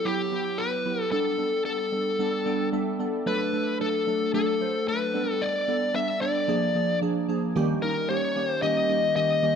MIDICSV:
0, 0, Header, 1, 3, 480
1, 0, Start_track
1, 0, Tempo, 535714
1, 1007, Time_signature, 4, 2, 24, 8
1, 8561, End_track
2, 0, Start_track
2, 0, Title_t, "Lead electric guitar"
2, 0, Program_c, 0, 29
2, 45, Note_on_c, 0, 67, 88
2, 521, Note_on_c, 0, 71, 95
2, 541, Note_off_c, 0, 67, 0
2, 997, Note_off_c, 0, 71, 0
2, 1000, Note_on_c, 0, 69, 93
2, 1450, Note_off_c, 0, 69, 0
2, 1480, Note_on_c, 0, 69, 83
2, 2408, Note_off_c, 0, 69, 0
2, 2932, Note_on_c, 0, 71, 88
2, 3376, Note_off_c, 0, 71, 0
2, 3415, Note_on_c, 0, 69, 79
2, 3858, Note_off_c, 0, 69, 0
2, 3893, Note_on_c, 0, 69, 85
2, 4371, Note_off_c, 0, 69, 0
2, 4375, Note_on_c, 0, 71, 93
2, 4760, Note_off_c, 0, 71, 0
2, 4760, Note_on_c, 0, 69, 93
2, 4853, Note_on_c, 0, 74, 107
2, 4865, Note_off_c, 0, 69, 0
2, 5332, Note_off_c, 0, 74, 0
2, 5336, Note_on_c, 0, 76, 106
2, 5565, Note_off_c, 0, 76, 0
2, 5569, Note_on_c, 0, 74, 93
2, 6252, Note_off_c, 0, 74, 0
2, 7009, Note_on_c, 0, 70, 86
2, 7231, Note_off_c, 0, 70, 0
2, 7246, Note_on_c, 0, 73, 101
2, 7605, Note_off_c, 0, 73, 0
2, 7605, Note_on_c, 0, 72, 101
2, 7723, Note_off_c, 0, 72, 0
2, 7727, Note_on_c, 0, 75, 108
2, 8197, Note_off_c, 0, 75, 0
2, 8208, Note_on_c, 0, 75, 106
2, 8561, Note_off_c, 0, 75, 0
2, 8561, End_track
3, 0, Start_track
3, 0, Title_t, "Synth keys"
3, 0, Program_c, 1, 88
3, 0, Control_c, 1, 64, 127
3, 0, Note_on_c, 1, 54, 72
3, 0, Note_on_c, 1, 59, 66
3, 0, Note_on_c, 1, 64, 65
3, 0, Note_on_c, 1, 67, 80
3, 44, Note_off_c, 1, 54, 0
3, 44, Note_on_c, 1, 54, 92
3, 48, Note_off_c, 1, 59, 0
3, 48, Note_on_c, 1, 59, 79
3, 51, Note_off_c, 1, 64, 0
3, 51, Note_on_c, 1, 64, 82
3, 55, Note_off_c, 1, 67, 0
3, 55, Note_on_c, 1, 67, 97
3, 211, Note_off_c, 1, 54, 0
3, 212, Note_off_c, 1, 59, 0
3, 214, Note_off_c, 1, 64, 0
3, 216, Note_off_c, 1, 67, 0
3, 283, Note_on_c, 1, 54, 73
3, 287, Note_on_c, 1, 59, 69
3, 291, Note_on_c, 1, 64, 68
3, 293, Note_on_c, 1, 67, 80
3, 450, Note_off_c, 1, 54, 0
3, 452, Note_off_c, 1, 59, 0
3, 454, Note_off_c, 1, 64, 0
3, 455, Note_off_c, 1, 67, 0
3, 523, Note_on_c, 1, 54, 71
3, 528, Note_on_c, 1, 59, 62
3, 531, Note_on_c, 1, 64, 64
3, 533, Note_on_c, 1, 67, 80
3, 690, Note_off_c, 1, 54, 0
3, 692, Note_off_c, 1, 59, 0
3, 694, Note_off_c, 1, 64, 0
3, 695, Note_off_c, 1, 67, 0
3, 764, Note_on_c, 1, 54, 72
3, 766, Note_on_c, 1, 59, 65
3, 772, Note_on_c, 1, 64, 64
3, 772, Note_on_c, 1, 67, 76
3, 930, Note_off_c, 1, 54, 0
3, 932, Note_off_c, 1, 59, 0
3, 934, Note_off_c, 1, 64, 0
3, 935, Note_off_c, 1, 67, 0
3, 1001, Note_on_c, 1, 55, 91
3, 1006, Note_on_c, 1, 59, 83
3, 1008, Note_on_c, 1, 62, 86
3, 1012, Note_on_c, 1, 69, 97
3, 1017, Control_c, 1, 64, 0
3, 1169, Note_off_c, 1, 55, 0
3, 1172, Note_off_c, 1, 59, 0
3, 1173, Note_off_c, 1, 62, 0
3, 1174, Note_off_c, 1, 69, 0
3, 1176, Control_c, 1, 64, 127
3, 1237, Note_on_c, 1, 55, 76
3, 1242, Note_on_c, 1, 59, 68
3, 1245, Note_on_c, 1, 62, 64
3, 1249, Note_on_c, 1, 69, 76
3, 1407, Note_off_c, 1, 55, 0
3, 1409, Note_off_c, 1, 59, 0
3, 1411, Note_off_c, 1, 62, 0
3, 1413, Note_off_c, 1, 69, 0
3, 1483, Note_on_c, 1, 55, 73
3, 1486, Note_on_c, 1, 59, 68
3, 1488, Note_on_c, 1, 62, 66
3, 1492, Note_on_c, 1, 69, 80
3, 1650, Note_off_c, 1, 55, 0
3, 1651, Note_off_c, 1, 59, 0
3, 1653, Note_off_c, 1, 62, 0
3, 1654, Note_off_c, 1, 69, 0
3, 1720, Note_on_c, 1, 55, 74
3, 1725, Note_on_c, 1, 59, 65
3, 1727, Note_on_c, 1, 62, 65
3, 1732, Note_on_c, 1, 69, 78
3, 1889, Note_off_c, 1, 55, 0
3, 1891, Note_off_c, 1, 59, 0
3, 1892, Note_off_c, 1, 62, 0
3, 1895, Note_off_c, 1, 69, 0
3, 1961, Note_on_c, 1, 55, 97
3, 1963, Note_on_c, 1, 59, 85
3, 1968, Note_on_c, 1, 62, 85
3, 1971, Note_on_c, 1, 69, 105
3, 2129, Note_off_c, 1, 55, 0
3, 2130, Note_off_c, 1, 59, 0
3, 2132, Note_off_c, 1, 62, 0
3, 2134, Note_off_c, 1, 69, 0
3, 2201, Note_on_c, 1, 55, 90
3, 2203, Note_on_c, 1, 59, 79
3, 2205, Note_on_c, 1, 79, 72
3, 2208, Note_on_c, 1, 62, 79
3, 2212, Note_on_c, 1, 69, 96
3, 2369, Note_off_c, 1, 55, 0
3, 2370, Note_off_c, 1, 59, 0
3, 2373, Note_off_c, 1, 62, 0
3, 2374, Note_off_c, 1, 69, 0
3, 2429, Note_off_c, 1, 79, 0
3, 2440, Note_on_c, 1, 55, 85
3, 2443, Note_on_c, 1, 59, 78
3, 2447, Note_on_c, 1, 76, 68
3, 2449, Note_on_c, 1, 62, 79
3, 2451, Note_on_c, 1, 69, 93
3, 2609, Note_off_c, 1, 55, 0
3, 2610, Note_off_c, 1, 59, 0
3, 2613, Note_off_c, 1, 62, 0
3, 2614, Note_off_c, 1, 69, 0
3, 2680, Note_on_c, 1, 55, 87
3, 2683, Note_on_c, 1, 59, 81
3, 2688, Note_on_c, 1, 62, 78
3, 2691, Note_on_c, 1, 69, 92
3, 2849, Note_off_c, 1, 55, 0
3, 2850, Note_off_c, 1, 59, 0
3, 2852, Note_off_c, 1, 62, 0
3, 2854, Note_off_c, 1, 69, 0
3, 2893, Note_off_c, 1, 76, 0
3, 2922, Note_on_c, 1, 54, 91
3, 2925, Note_on_c, 1, 57, 88
3, 2930, Note_on_c, 1, 62, 89
3, 2931, Note_on_c, 1, 69, 103
3, 2940, Control_c, 1, 64, 0
3, 3071, Control_c, 1, 64, 127
3, 3089, Note_off_c, 1, 54, 0
3, 3091, Note_off_c, 1, 57, 0
3, 3094, Note_off_c, 1, 62, 0
3, 3094, Note_off_c, 1, 69, 0
3, 3161, Note_on_c, 1, 54, 71
3, 3164, Note_on_c, 1, 57, 70
3, 3168, Note_on_c, 1, 62, 66
3, 3172, Note_on_c, 1, 69, 82
3, 3329, Note_off_c, 1, 54, 0
3, 3330, Note_off_c, 1, 57, 0
3, 3332, Note_off_c, 1, 62, 0
3, 3334, Note_off_c, 1, 69, 0
3, 3402, Note_on_c, 1, 54, 70
3, 3405, Note_on_c, 1, 57, 67
3, 3410, Note_on_c, 1, 62, 70
3, 3413, Note_on_c, 1, 69, 82
3, 3570, Note_off_c, 1, 54, 0
3, 3571, Note_off_c, 1, 57, 0
3, 3574, Note_off_c, 1, 62, 0
3, 3575, Note_off_c, 1, 69, 0
3, 3645, Note_on_c, 1, 54, 78
3, 3649, Note_on_c, 1, 57, 72
3, 3654, Note_on_c, 1, 62, 73
3, 3658, Note_on_c, 1, 69, 83
3, 3811, Note_off_c, 1, 54, 0
3, 3813, Note_off_c, 1, 57, 0
3, 3815, Note_off_c, 1, 62, 0
3, 3817, Note_off_c, 1, 69, 0
3, 3884, Note_on_c, 1, 54, 96
3, 3888, Note_on_c, 1, 57, 83
3, 3891, Note_on_c, 1, 62, 92
3, 3896, Note_on_c, 1, 69, 104
3, 4050, Note_off_c, 1, 54, 0
3, 4052, Note_off_c, 1, 57, 0
3, 4054, Note_off_c, 1, 62, 0
3, 4056, Note_off_c, 1, 69, 0
3, 4124, Note_on_c, 1, 54, 74
3, 4128, Note_on_c, 1, 57, 68
3, 4132, Note_on_c, 1, 62, 65
3, 4134, Note_on_c, 1, 72, 82
3, 4291, Note_off_c, 1, 54, 0
3, 4292, Note_off_c, 1, 57, 0
3, 4295, Note_off_c, 1, 62, 0
3, 4296, Note_off_c, 1, 72, 0
3, 4365, Note_on_c, 1, 54, 71
3, 4370, Note_on_c, 1, 57, 63
3, 4373, Note_on_c, 1, 62, 65
3, 4377, Note_on_c, 1, 69, 82
3, 4531, Note_off_c, 1, 54, 0
3, 4534, Note_off_c, 1, 57, 0
3, 4535, Note_off_c, 1, 62, 0
3, 4537, Note_off_c, 1, 69, 0
3, 4603, Note_on_c, 1, 55, 79
3, 4606, Note_on_c, 1, 59, 73
3, 4611, Note_on_c, 1, 62, 71
3, 4615, Note_on_c, 1, 69, 83
3, 4619, Control_c, 1, 64, 0
3, 4781, Control_c, 1, 64, 127
3, 4989, Note_off_c, 1, 55, 0
3, 4991, Note_off_c, 1, 59, 0
3, 4993, Note_off_c, 1, 62, 0
3, 4995, Note_off_c, 1, 69, 0
3, 5087, Note_on_c, 1, 55, 73
3, 5089, Note_on_c, 1, 59, 69
3, 5092, Note_on_c, 1, 62, 67
3, 5096, Note_on_c, 1, 69, 85
3, 5252, Note_off_c, 1, 55, 0
3, 5253, Note_off_c, 1, 59, 0
3, 5254, Note_off_c, 1, 62, 0
3, 5256, Note_off_c, 1, 69, 0
3, 5322, Note_on_c, 1, 55, 74
3, 5327, Note_on_c, 1, 59, 69
3, 5331, Note_on_c, 1, 62, 68
3, 5332, Note_on_c, 1, 69, 83
3, 5490, Note_off_c, 1, 55, 0
3, 5492, Note_off_c, 1, 59, 0
3, 5494, Note_off_c, 1, 62, 0
3, 5495, Note_off_c, 1, 69, 0
3, 5564, Note_on_c, 1, 55, 75
3, 5569, Note_on_c, 1, 59, 70
3, 5572, Note_on_c, 1, 62, 71
3, 5575, Note_on_c, 1, 69, 84
3, 5730, Note_off_c, 1, 55, 0
3, 5733, Note_off_c, 1, 59, 0
3, 5735, Note_off_c, 1, 62, 0
3, 5736, Note_off_c, 1, 69, 0
3, 5804, Note_on_c, 1, 53, 96
3, 5809, Note_on_c, 1, 58, 92
3, 5811, Note_on_c, 1, 62, 89
3, 5814, Note_on_c, 1, 68, 110
3, 5820, Control_c, 1, 64, 0
3, 5971, Note_off_c, 1, 53, 0
3, 5973, Note_off_c, 1, 58, 0
3, 5974, Note_off_c, 1, 62, 0
3, 5975, Note_off_c, 1, 68, 0
3, 5980, Control_c, 1, 64, 127
3, 6047, Note_on_c, 1, 53, 76
3, 6049, Note_on_c, 1, 58, 71
3, 6053, Note_on_c, 1, 62, 65
3, 6058, Note_on_c, 1, 68, 80
3, 6212, Note_off_c, 1, 53, 0
3, 6213, Note_off_c, 1, 58, 0
3, 6215, Note_off_c, 1, 62, 0
3, 6218, Note_off_c, 1, 68, 0
3, 6284, Note_on_c, 1, 53, 90
3, 6287, Note_on_c, 1, 58, 80
3, 6291, Note_on_c, 1, 62, 81
3, 6295, Note_on_c, 1, 68, 99
3, 6450, Note_off_c, 1, 53, 0
3, 6452, Note_off_c, 1, 58, 0
3, 6454, Note_off_c, 1, 62, 0
3, 6456, Note_off_c, 1, 68, 0
3, 6526, Note_on_c, 1, 53, 92
3, 6529, Note_on_c, 1, 58, 76
3, 6534, Note_on_c, 1, 62, 83
3, 6537, Note_on_c, 1, 68, 99
3, 6692, Note_off_c, 1, 53, 0
3, 6693, Note_off_c, 1, 58, 0
3, 6696, Note_off_c, 1, 62, 0
3, 6697, Note_off_c, 1, 68, 0
3, 6768, Note_on_c, 1, 51, 118
3, 6770, Note_on_c, 1, 55, 111
3, 6773, Note_on_c, 1, 58, 108
3, 6776, Note_on_c, 1, 61, 107
3, 6778, Control_c, 1, 64, 0
3, 6779, Note_on_c, 1, 67, 127
3, 6933, Note_off_c, 1, 51, 0
3, 6934, Note_off_c, 1, 55, 0
3, 6935, Note_off_c, 1, 58, 0
3, 6937, Note_off_c, 1, 61, 0
3, 6938, Note_off_c, 1, 67, 0
3, 6944, Control_c, 1, 64, 127
3, 7007, Note_on_c, 1, 51, 75
3, 7010, Note_on_c, 1, 55, 68
3, 7014, Note_on_c, 1, 58, 69
3, 7015, Note_on_c, 1, 61, 73
3, 7019, Note_on_c, 1, 63, 87
3, 7172, Note_off_c, 1, 51, 0
3, 7174, Note_off_c, 1, 55, 0
3, 7175, Note_off_c, 1, 58, 0
3, 7176, Note_off_c, 1, 61, 0
3, 7178, Note_off_c, 1, 63, 0
3, 7245, Note_on_c, 1, 51, 81
3, 7249, Note_on_c, 1, 55, 69
3, 7251, Note_on_c, 1, 58, 69
3, 7254, Note_on_c, 1, 61, 67
3, 7257, Note_on_c, 1, 67, 82
3, 7411, Note_off_c, 1, 51, 0
3, 7413, Note_off_c, 1, 55, 0
3, 7414, Note_off_c, 1, 58, 0
3, 7415, Note_off_c, 1, 61, 0
3, 7417, Note_off_c, 1, 67, 0
3, 7485, Note_on_c, 1, 51, 74
3, 7489, Note_on_c, 1, 55, 74
3, 7492, Note_on_c, 1, 58, 68
3, 7494, Note_on_c, 1, 61, 70
3, 7497, Note_on_c, 1, 67, 86
3, 7651, Note_off_c, 1, 51, 0
3, 7653, Note_off_c, 1, 55, 0
3, 7654, Note_off_c, 1, 58, 0
3, 7656, Note_off_c, 1, 61, 0
3, 7657, Note_off_c, 1, 67, 0
3, 7723, Note_on_c, 1, 51, 99
3, 7725, Note_on_c, 1, 55, 90
3, 7727, Note_on_c, 1, 58, 94
3, 7731, Note_on_c, 1, 61, 89
3, 7735, Note_on_c, 1, 67, 107
3, 7890, Note_off_c, 1, 51, 0
3, 7891, Note_off_c, 1, 55, 0
3, 7892, Note_off_c, 1, 58, 0
3, 7894, Note_off_c, 1, 61, 0
3, 7896, Note_off_c, 1, 67, 0
3, 7964, Note_on_c, 1, 51, 80
3, 7969, Note_on_c, 1, 55, 73
3, 7970, Note_on_c, 1, 58, 72
3, 7973, Note_on_c, 1, 61, 72
3, 7976, Note_on_c, 1, 67, 81
3, 8131, Note_off_c, 1, 51, 0
3, 8133, Note_off_c, 1, 55, 0
3, 8134, Note_off_c, 1, 58, 0
3, 8135, Note_off_c, 1, 61, 0
3, 8137, Note_off_c, 1, 67, 0
3, 8204, Note_on_c, 1, 51, 77
3, 8205, Note_on_c, 1, 55, 68
3, 8207, Note_on_c, 1, 58, 66
3, 8211, Note_on_c, 1, 61, 67
3, 8213, Note_on_c, 1, 67, 86
3, 8370, Note_off_c, 1, 51, 0
3, 8371, Note_off_c, 1, 55, 0
3, 8372, Note_off_c, 1, 58, 0
3, 8374, Note_off_c, 1, 61, 0
3, 8375, Note_off_c, 1, 67, 0
3, 8442, Note_on_c, 1, 51, 76
3, 8445, Note_on_c, 1, 55, 72
3, 8447, Note_on_c, 1, 58, 69
3, 8449, Note_on_c, 1, 61, 73
3, 8452, Note_on_c, 1, 67, 87
3, 8561, Note_off_c, 1, 51, 0
3, 8561, Note_off_c, 1, 55, 0
3, 8561, Note_off_c, 1, 58, 0
3, 8561, Note_off_c, 1, 61, 0
3, 8561, Note_off_c, 1, 67, 0
3, 8561, End_track
0, 0, End_of_file